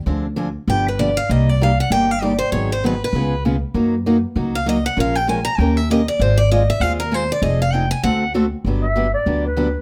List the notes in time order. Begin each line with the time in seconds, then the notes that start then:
0.06 D2 D3 F3 C4 D4 G#4
0.36 D3 F3 C4 D4 G#4
0.68 G1 D3 F3 B3 D4 G4 G5
0.88 B4
0.99 D3 F3 B3 D4 G4 D5
1.17 F5
1.29 C2 C3 G3 A#3 D#4 G4 D#5
1.49 D5
1.61 C3 G3 A#3 D#4 G4 F5
1.80 F#5
1.90 G1 C3 G3 A#3 D#4 G4 G5
2.11 F5
2.22 C3 G3 A#3 D#4 G4 D5
2.39 C5
2.52 G#1 D#3 F#3 B3 D#4 G#4 C#5
2.72 C5
2.84 D#3 F#3 B3 D#4 G#4 B4
3.04 B4
3.13 C#2 C#3 G#3 B3 F4 G#4
3.45 C#3 G#3 B3 F4 G#4
3.74 F#2 F#3 A#3 D#4 F#4
4.06 F#3 A#3 D#4 F#4
4.35 C#2 F#3 A#3 D#4 F#4
4.55 F5
4.66 F#3 A#3 D#4 F#4 D#5
4.86 F#5
4.97 A#1 F3 G#3 C#4 F4 A#4 F5
5.15 G5
5.27 F3 G#3 C#4 F4 A#4 G#5
5.45 A#5
5.58 D#2 D#3 A#3 C#4 G4 A#4 G5
5.77 E5
5.90 D#3 A#3 C#4 G4 A#4 D#5
6.08 D5
6.19 G#1 G#3 C4 F4 G#4 C5
6.38 D5
6.52 G#3 C4 F4 G#4 D#5
6.70 E5
6.80 D#2 G#3 C4 F4 G#4 F5
7.00 A#4
7.11 G#3 C4 F4 G#4 C5
7.32 D5
7.42 F1 F3 C4 D#4 G#4 D#5
7.62 F5
7.73 F3 C4 D#4 G#4 G5
7.91 G#5
8.03 D2 D3 A3 C4 F#4 A4 F#5
8.34 D3 A3 C4 F#4 A4
8.65 G1 D3 F#3 B3 D4 G4
8.82 E5
8.96 D3 F#3 B3 D4 G4
9.14 D5
9.26 D2 D3 F#3 B3 D4 G4
9.46 B4
9.57 D3 F#3 B3 D4 G4